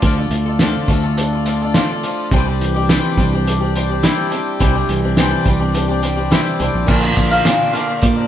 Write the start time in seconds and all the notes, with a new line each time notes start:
Already playing: A3 D4 F4
0.02 D2 D3 F3 D4 F4 A4, kick, closed hi-hat
0.17 D4 F4 A4
0.30 D2 A3, closed hi-hat
0.46 D4 F4 A4
0.59 D3 F3 D4 F4 A4, snare, closed hi-hat
0.88 D2 F3 A3 D4 F4, kick, closed hi-hat
0.93 A4
1.03 D4 F4 A4
1.17 D4, closed hi-hat
1.33 F4 A4
1.37 D4
1.45 F3 A3 D4 F4, closed hi-hat
1.50 A4
1.62 D4 F4 A4
1.74 D3 F3 D4 F4 A4, snare, closed hi-hat
1.90 D4 F4 A4
2.03 F3 D4 F4 A4, closed hi-hat
2.31 C2 C3 E3 G3 C4 D4 G4, kick, closed hi-hat
2.46 G3 C4 D4 G4
2.61 E3, closed hi-hat
2.74 G3 C4 D4 G4
2.89 C3 E3 G3 C4 D4 G4, snare, closed hi-hat
3.17 C2 G3 C4 D4, kick, closed hi-hat
3.21 G4
3.33 G3 C4 D4 G4
3.47 D4, closed hi-hat
3.60 G3 C4 D4 G4
3.75 G3 C4 D4 G4, closed hi-hat
3.90 G3 C4 D4 G4
4.03 C3 E3 G3 C4 D4 E4 G4, snare, closed hi-hat
4.30 G3 C4 D4 G4, closed hi-hat
4.60 C2 C3 E3 G3 C4 D4 G4, kick, closed hi-hat
4.75 G3 C4 D4 G4
4.89 C2 E3, closed hi-hat
5.02 G3 C4 D4 G4
5.17 C3 E3 G3 C4 D4 G4, snare, closed hi-hat
5.45 C2 G3 C4 D4 G4, kick, closed hi-hat
5.59 G3 C4 D4 G4
5.75 D4, closed hi-hat
5.88 G3 C4 D4 G4
6.02 G3 C4 D4 G4, closed hi-hat
6.16 G3 C4 D4 G4
6.30 C3 E3 G3 C4 D4 E4 G4 E5, snare, closed hi-hat
6.59 C2 G3 C4 D4 D5, closed hi-hat
6.64 G4
6.74 A#1
6.86 A#1 A#2 D3 F3 A#3 D4 F4 A#4 D5 F5, kick, crash
7.02 F3 A#3 D4 A#4
7.16 A#1 F3 A#3 D4 A#4, kick, closed hi-hat
7.29 F3 A#3 D4 A#4 F5
7.44 A#2 D3 F3 A#3 D4 A#4, snare, closed hi-hat
7.72 A#2 D3 A#3 D4 F4 F5, closed hi-hat
7.88 F3 A#3 D4 A#4
8.02 A#2 D5, kick, closed hi-hat
8.15 F3 A#3 D4 A#4